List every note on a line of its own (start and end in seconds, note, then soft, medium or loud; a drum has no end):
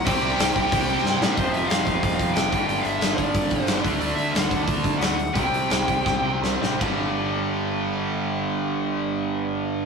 0.05 0.18 C2 loud
0.05 1.35 C3 medium
0.05 1.36 G3 loud
0.05 1.37 C4 loud
0.05 1.17 G5 medium
0.05 kick loud
0.05 open hi-hat medium
0.22 0.33 C2 medium
0.39 0.50 C2 medium
0.39 snare loud
0.39 open hi-hat medium
0.56 0.67 C2 medium
0.56 kick medium
0.72 0.95 C2 medium
0.72 kick loud
0.72 open hi-hat medium
1.04 1.15 G2 loud
1.04 snare medium
1.21 1.32 A2 loud
1.21 1.37 C3 medium
1.21 1.37 G3 medium
1.21 1.36 C4 loud
1.21 snare loud
1.36 1.51 F1 loud
1.36 2.50 F2 medium
1.36 2.51 C3 medium
1.36 2.52 F3 loud
1.36 1.54 C5 medium
1.36 kick loud
1.36 open hi-hat medium
1.52 1.67 F1 medium
1.52 1.67 E5 medium
1.52 open hi-hat medium
1.68 1.84 F1 medium
1.68 1.99 F5 medium
1.68 snare loud
1.68 open hi-hat medium
1.86 2.01 F1 medium
1.86 kick medium
1.86 open hi-hat medium
2.00 2.17 F1 medium
2.00 2.35 F5 medium
2.00 kick loud
2.00 open hi-hat medium
2.19 2.33 F2 medium
2.19 kick medium
2.19 open hi-hat medium
2.33 2.49 F1 medium
2.33 2.66 G5 medium
2.33 snare loud
2.33 open hi-hat medium
2.50 2.66 G1 medium
2.50 3.65 G2 medium
2.50 3.66 D3 loud
2.50 3.67 G3 loud
2.50 kick loud
2.50 open hi-hat medium
2.67 2.82 G1 medium
2.67 2.84 G5 medium
2.67 open hi-hat medium
2.81 2.98 G1 medium
2.81 3.13 E5 medium
2.81 open hi-hat medium
3.00 3.14 G1 medium
3.00 snare loud
3.00 open hi-hat medium
3.14 3.62 D5 medium
3.18 3.32 G1 medium
3.18 kick medium
3.18 open hi-hat medium
3.34 3.48 G1 medium
3.34 kick loud
3.34 open hi-hat medium
3.50 3.65 G1 medium
3.50 kick medium
3.50 open hi-hat medium
3.62 3.77 C5 medium
3.66 3.80 G1 medium
3.66 3.82 G2 medium
3.66 3.80 D3 medium
3.66 snare loud
3.66 open hi-hat medium
3.70 3.83 G3 medium
3.81 3.98 D2 medium
3.81 4.97 D3 medium
3.81 4.98 A3 medium
3.81 4.99 D4 medium
3.81 kick medium
3.81 open hi-hat medium
3.99 4.14 D2 medium
3.99 4.15 D5 medium
3.99 open hi-hat medium
4.15 4.30 D2 medium
4.15 4.32 E5 medium
4.15 open hi-hat medium
4.31 4.48 D2 medium
4.31 4.63 F#5 medium
4.31 open hi-hat medium
4.36 snare loud
4.51 4.65 D2 medium
4.51 kick medium
4.51 open hi-hat medium
4.63 4.98 A5 loud
4.68 4.81 D2 medium
4.68 kick loud
4.68 open hi-hat medium
4.84 4.98 D3 medium
4.84 kick medium
4.84 open hi-hat medium
4.98 5.29 D2 medium
4.98 5.15 D3 medium
4.98 5.16 A3 medium
4.98 5.34 F#5 medium
4.98 open hi-hat medium
5.03 5.17 D4 medium
5.03 snare loud
5.19 open hi-hat soft
5.34 5.50 C2 medium
5.34 6.59 C3 medium
5.34 6.60 G3 medium
5.34 6.60 C4 medium
5.34 6.38 G5 medium
5.34 kick loud
5.34 open hi-hat medium
5.52 5.67 C2 medium
5.52 open hi-hat soft
5.69 5.84 C2 medium
5.69 snare loud
5.69 open hi-hat medium
5.88 6.03 C2 medium
5.88 kick medium
5.88 open hi-hat medium
6.06 6.21 C2 medium
6.06 kick loud
6.06 snare medium
6.24 6.39 C2 medium
6.42 6.58 C2 medium
6.42 snare medium
6.61 6.77 A1 medium
6.61 6.80 C3 medium
6.61 6.80 G3 medium
6.61 6.79 C4 medium
6.61 snare medium
6.80 9.86 G1 medium
6.80 9.86 G2 medium
6.80 9.86 D3 medium
6.80 9.86 G3 medium
6.80 kick loud
6.80 crash medium